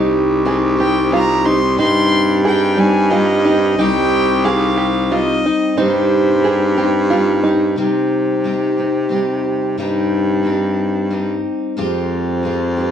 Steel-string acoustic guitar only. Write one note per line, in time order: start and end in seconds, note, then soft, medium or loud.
0.00 0.46 C3 medium
0.00 1.10 G3 medium
0.00 0.45 C4 medium
0.00 0.45 D#4 medium
0.00 0.46 G4 loud
0.45 0.79 C4 medium
0.45 0.77 D#4 medium
0.45 0.75 G4 medium
0.76 1.11 C4 soft
0.76 1.11 D#4 medium
0.76 1.11 G4 medium
1.10 1.45 G3 medium
1.10 1.46 C4 medium
1.10 1.46 D#4 medium
1.14 1.43 G4 medium
1.44 1.79 C4 soft
1.44 1.79 D#4 soft
1.44 1.78 G4 soft
1.78 2.45 C3 medium
1.78 3.11 G3 medium
1.78 2.46 C4 medium
1.78 2.47 D#4 medium
1.78 2.48 G4 medium
2.46 2.79 C4 medium
2.46 2.79 D#4 medium
2.46 2.80 G4 medium
2.80 3.11 C4 soft
2.80 3.13 D#4 soft
3.11 3.45 G3 medium
3.11 3.45 C4 medium
3.11 3.46 D#4 medium
3.11 3.44 G4 medium
3.46 3.79 C4 soft
3.46 3.79 D#4 soft
3.46 3.79 G4 soft
3.78 4.45 C3 medium
3.78 5.10 G3 medium
3.78 4.45 C4 medium
3.78 4.46 D#4 medium
3.78 4.47 G4 medium
4.46 5.11 C4 medium
4.46 5.12 D#4 medium
4.46 5.14 G4 medium
5.10 5.78 G3 medium
5.10 5.78 C4 medium
5.10 5.79 D#4 medium
5.10 5.79 G4 medium
5.78 6.44 C3 medium
5.78 6.45 G3 medium
5.78 6.43 C4 medium
5.78 6.44 D#4 medium
5.78 6.45 G4 medium
6.44 6.78 C4 medium
6.44 6.77 D#4 medium
6.44 6.75 G4 medium
6.76 7.10 C4 medium
6.76 7.11 D#4 medium
6.76 7.10 G4 medium
7.10 7.44 G3 medium
7.10 7.45 C4 medium
7.10 7.45 D#4 medium
7.10 7.44 G4 medium
7.45 7.77 C4 soft
7.45 7.77 D#4 medium
7.45 7.77 G4 soft
7.76 8.44 C3 medium
7.76 8.44 G3 medium
7.76 8.45 C4 medium
7.76 8.45 D#4 medium
7.76 8.47 G4 medium
8.44 8.78 G3 medium
8.44 8.78 C4 medium
8.44 8.77 D#4 medium
8.44 8.76 G4 medium
8.77 9.09 C4 soft
8.77 9.11 D#4 soft
8.77 9.11 G4 soft
9.09 9.78 G3 medium
9.09 9.79 C4 soft
9.09 9.78 D#4 medium
9.09 9.80 G4 medium
9.78 10.45 C3 medium
9.78 10.43 G3 medium
9.78 10.44 C4 medium
9.78 10.44 D#4 medium
9.78 10.46 G4 medium
10.43 11.10 G3 medium
10.43 11.10 C4 medium
10.43 11.11 D#4 medium
10.43 11.13 G4 medium
11.10 11.77 G3 medium
11.10 11.76 C4 medium
11.10 11.78 D#4 medium
11.10 11.78 G4 medium
11.77 12.45 F3 medium
11.77 12.42 G#3 medium
11.77 12.44 C4 medium
11.77 12.44 F4 medium
11.77 12.46 G4 medium
12.43 12.78 G#3 medium
12.43 12.79 C4 medium
12.43 12.78 F4 medium
12.43 12.76 G4 medium
12.77 12.91 C4 soft
12.77 12.91 F4 soft
12.77 12.91 G4 medium